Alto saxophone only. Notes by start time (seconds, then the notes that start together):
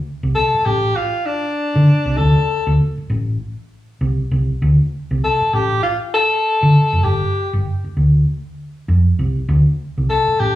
0.35 A4
0.66 G4
0.96 F4
1.26 D4
2.17 A4
5.24 A4
5.54 G4
5.83 F4
6.14 A4
7.04 G4
10.10 A4
10.40 G4